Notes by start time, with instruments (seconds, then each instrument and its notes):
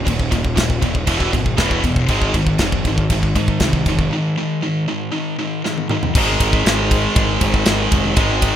0.05 picked electric bass D#1, distorted electric guitar D#2 A#2, kick, crash
0.20 kick
0.31 picked electric bass D#1, distorted electric guitar D#2 A#2, kick, crash
0.45 kick
0.56 picked electric bass D#1, distorted electric guitar D#2 A#2, kick, snare, crash
0.70 kick
0.82 picked electric bass D#1, distorted electric guitar D#2 A#2, kick, crash
0.95 kick
1.07 picked electric bass E1, distorted electric guitar E2 B2 E3, kick, crash
1.20 kick
1.33 picked electric bass G#1, distorted electric guitar E2 B2, kick, crash
1.46 kick
1.57 picked electric bass E1, distorted electric guitar E2 B2 E3, kick, snare, crash
1.71 kick
1.82 picked electric bass E1, distorted electric guitar E2 B2, kick, crash
1.96 kick
2.08 picked electric bass G#1, distorted electric guitar G#2 D#3 G#3, kick, crash
2.22 kick
2.34 picked electric bass G#1, distorted electric guitar G#2 D#3, kick, crash
2.47 kick
2.58 picked electric bass F1, distorted electric guitar G#2 D#3, kick, snare, crash
2.72 kick
2.85 picked electric bass G#1, distorted electric guitar G#2 D#3, kick, crash
2.98 kick
3.10 picked electric bass G#1, distorted electric guitar G#2 D#3, kick, crash
3.23 kick
3.35 picked electric bass G#2, distorted electric guitar G#2 D#3, kick, crash
3.48 kick
3.60 picked electric bass C2, distorted electric guitar G#2 D#3, kick, snare, crash
3.73 kick
3.86 picked electric bass F1, distorted electric guitar G#2 D#3, kick, crash
3.99 kick
4.13 distorted electric guitar G#2 D#3
4.38 distorted electric guitar G#2 D#3
4.63 distorted electric guitar G#2 D#3
4.88 distorted electric guitar G#2 D#3
5.12 distorted electric guitar G#2 D#3
5.38 distorted electric guitar G#2 D#3
5.64 distorted electric guitar G#2 D#3, snare
5.78 high tom
5.89 distorted electric guitar G#2 D#3, mid tom
6.03 floor tom
6.15 picked electric bass G#1, distorted electric guitar G#2 D#3, kick, crash
6.20 distorted electric guitar G#3
6.40 picked electric bass G#1, kick, ride
6.53 kick
6.65 picked electric bass G#1, snare, ride
6.91 kick, ride
7.16 picked electric bass G#1, kick, ride
7.41 picked electric bass G#1, kick, ride
7.54 kick
7.66 picked electric bass G#1, snare, ride
7.92 picked electric bass F1, kick, ride
8.16 picked electric bass G#1, distorted electric guitar G#2 D#3 G#3, kick, ride
8.42 kick, ride